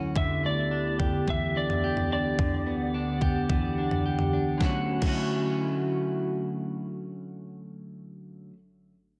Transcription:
Already playing: ambient pad D2 D3 C#4 E4 F#5, clean electric guitar D3 F#3 A3 C#4 F#4
0.16 clean electric guitar D3, ambient pad B3 G4, electric slide guitar E5, kick, floor tom
0.44 clean electric guitar A3, electric slide guitar D5
0.71 clean electric guitar D4
0.99 clean electric guitar G4, kick, floor tom
1.27 clean electric guitar E3, electric slide guitar E5, kick, floor tom
1.55 clean electric guitar D4, electric slide guitar D5
1.70 floor tom
1.84 clean electric guitar G4
1.97 floor tom
2.11 clean electric guitar D4, electric slide guitar D5
2.38 ambient pad D2 G4 F#5, clean electric guitar D3, kick, floor tom
2.66 clean electric guitar B3
2.94 clean electric guitar D4
3.21 clean electric guitar G4, kick, floor tom
3.49 clean electric guitar E3, kick, floor tom
3.78 clean electric guitar D4
3.91 floor tom
4.05 clean electric guitar G4
4.19 floor tom
4.33 clean electric guitar D4
4.58 clean electric guitar D3 F#3, ambient pad D3 A3 C#4 E4 F#4, kick, snare
4.62 clean electric guitar A3 C#4 F#4
5.00 clean electric guitar D3 F#3, kick, crash
5.05 clean electric guitar A3 C#4 F#4

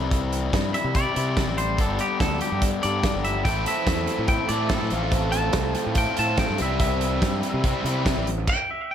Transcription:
Already playing: fingered electric bass C2, overdriven electric guitar C3 E3 G3 C4 E4
0.11 kick, closed hi-hat
0.32 closed hi-hat
0.53 fingered electric bass G2, kick, snare, closed hi-hat
0.74 clean electric guitar E5, closed hi-hat
0.84 fingered electric bass C3
0.95 overdriven electric guitar C3 E3 G3 C4 E4, clean electric guitar D5, kick, closed hi-hat
1.15 fingered electric bass C3, overdriven electric guitar C3 E3 G3 C4 E4, closed hi-hat
1.37 kick, snare, closed hi-hat
1.47 fingered electric bass A1
1.58 clean electric guitar C5, closed hi-hat
1.78 fingered electric bass G1, overdriven electric guitar G2 D3 G3 B3 D4 G4, clean electric guitar A4, kick, closed hi-hat
1.99 clean electric guitar G4, closed hi-hat
2.20 fingered electric bass D2, clean electric guitar A4, kick, snare, closed hi-hat
2.41 clean electric guitar G4, closed hi-hat
2.52 fingered electric bass G2
2.62 kick, closed hi-hat
2.82 fingered electric bass G2, overdriven electric guitar G2 D3 G3 B3 D4 G4, clean electric guitar D5, closed hi-hat
3.02 overdriven electric guitar G2 D3 G3 B3 D4 G4, kick, snare, closed hi-hat
3.14 fingered electric bass G1
3.25 clean electric guitar E5, closed hi-hat
3.44 fingered electric bass A1, overdriven electric guitar A2 E3 A3 C4 A4, clean electric guitar G5, kick, closed hi-hat
3.48 overdriven electric guitar E4
3.66 clean electric guitar E5, closed hi-hat
3.87 fingered electric bass E2, kick, snare, closed hi-hat
4.07 closed hi-hat
4.18 fingered electric bass A2
4.28 clean electric guitar G5, kick, closed hi-hat
4.49 fingered electric bass A2, overdriven electric guitar E3 A3 C4 E4 A4, clean electric guitar D5, closed hi-hat
4.53 overdriven electric guitar A2
4.69 overdriven electric guitar A2 E3 A3 C4, clean electric guitar A4, kick, snare, closed hi-hat
4.74 overdriven electric guitar E4 A4
4.82 fingered electric bass A2
4.90 fingered electric bass A1, overdriven electric guitar A2 F3 A3 C4 F4 A4, closed hi-hat
5.12 kick, closed hi-hat
5.32 clean electric guitar A5, closed hi-hat
5.53 fingered electric bass C2, kick, snare, closed hi-hat
5.75 clean electric guitar G5, closed hi-hat
5.86 fingered electric bass A2
5.95 overdriven electric guitar A2 F3 A3 C4 A4, clean electric guitar G5, kick, closed hi-hat
5.99 overdriven electric guitar F4
6.17 fingered electric bass A2, overdriven electric guitar F3 A3 C4 F4 A4, clean electric guitar A5, closed hi-hat
6.21 overdriven electric guitar A2
6.37 clean electric guitar G5, kick, snare, closed hi-hat
6.50 fingered electric bass G2
6.58 fingered electric bass C2, overdriven electric guitar C3 E3 G3 C4 E4, clean electric guitar E5, closed hi-hat
6.80 clean electric guitar E5, kick, closed hi-hat
7.01 closed hi-hat
7.21 fingered electric bass G2, kick, snare, closed hi-hat
7.43 closed hi-hat
7.54 fingered electric bass C3
7.64 overdriven electric guitar C3 E3 G3 C4 E4, kick, closed hi-hat
7.84 fingered electric bass C3, overdriven electric guitar C3 E3 G3 C4 E4, closed hi-hat
8.06 kick, snare, closed hi-hat
8.17 fingered electric bass A1
8.27 closed hi-hat
8.47 clean electric guitar G5, kick, crash
8.71 clean electric guitar E5
8.91 clean electric guitar G5

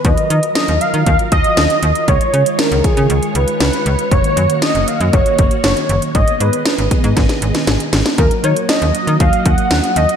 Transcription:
0.04 fm bass D#2, string machine D#3 F#3 F4 A#4, soft synth lead D#5, kick, closed hi-hat
0.18 closed hi-hat
0.30 fm bass D#3, closed hi-hat
0.43 closed hi-hat
0.55 soft synth lead D#5, snare, closed hi-hat
0.68 fm bass D#2, closed hi-hat
0.81 soft synth lead F5, closed hi-hat
0.94 fm bass D#3, closed hi-hat
1.06 fm bass D#2, soft synth lead F5, kick, closed hi-hat
1.19 closed hi-hat
1.32 fm bass D#2, soft synth lead D#5, kick, closed hi-hat
1.44 closed hi-hat
1.57 fm bass D#2, snare, closed hi-hat
1.70 closed hi-hat
1.83 fm bass D#2, closed hi-hat
1.95 closed hi-hat
2.08 fm bass C#2, string machine G#3 C#5, soft synth lead C#5, kick, closed hi-hat
2.21 closed hi-hat
2.33 fm bass C#3, closed hi-hat
2.46 closed hi-hat
2.59 soft synth lead A#4, snare, closed hi-hat
2.72 fm bass C#2, closed hi-hat
2.84 soft synth lead G#4, kick, closed hi-hat
2.97 fm bass C#3, closed hi-hat
3.10 fm bass C#2, closed hi-hat
3.23 closed hi-hat
3.35 fm bass C#2, soft synth lead B4, closed hi-hat
3.48 closed hi-hat
3.60 fm bass C#2, snare, closed hi-hat
3.73 closed hi-hat
3.86 fm bass C#2, closed hi-hat
3.99 closed hi-hat
4.11 fm bass F#1, string machine A#3 F#4, soft synth lead C#5, kick, closed hi-hat
4.24 closed hi-hat
4.37 fm bass F#2, closed hi-hat
4.50 closed hi-hat
4.62 soft synth lead D#5, snare, closed hi-hat
4.75 fm bass F#1, closed hi-hat
4.88 soft synth lead F5, closed hi-hat
5.00 fm bass F#2, soft synth lead D#5, closed hi-hat
5.13 fm bass F#1, soft synth lead C#5, kick, closed hi-hat
5.26 closed hi-hat
5.38 fm bass F#1, kick, closed hi-hat
5.51 closed hi-hat
5.64 fm bass F#1, soft synth lead C#5, snare, closed hi-hat
5.77 closed hi-hat
5.89 fm bass F#1, closed hi-hat
6.02 closed hi-hat
6.15 fm bass G#1, string machine B3 G#4 D#5, soft synth lead D#5, kick, closed hi-hat
6.28 closed hi-hat
6.40 fm bass G#2, soft synth lead B4, closed hi-hat
6.53 closed hi-hat
6.66 snare, closed hi-hat
6.78 fm bass G#1, closed hi-hat
6.91 kick, closed hi-hat
7.04 fm bass G#2, closed hi-hat
7.17 fm bass G#1, kick, snare, closed hi-hat
7.29 snare, closed hi-hat
7.42 fm bass G#1, closed hi-hat
7.55 snare, closed hi-hat
7.67 fm bass G#1, snare, closed hi-hat
7.80 closed hi-hat
7.93 fm bass G#1, snare, closed hi-hat
8.06 snare, closed hi-hat
8.18 fm bass D#2, string machine F#3 A#3 F#4 D#5, soft synth lead A#4, kick, closed hi-hat
8.31 closed hi-hat
8.44 fm bass D#3, soft synth lead C#5, closed hi-hat
8.56 closed hi-hat
8.69 soft synth lead D#5, snare, closed hi-hat
8.82 fm bass D#2, closed hi-hat
8.95 closed hi-hat
9.07 fm bass D#3, closed hi-hat
9.20 fm bass D#2, soft synth lead F5, kick, closed hi-hat
9.33 closed hi-hat
9.45 fm bass D#2, soft synth lead F#5, kick, closed hi-hat
9.58 closed hi-hat
9.71 fm bass D#2, snare, closed hi-hat
9.84 closed hi-hat
9.96 fm bass D#2, soft synth lead D#5, closed hi-hat
10.09 closed hi-hat

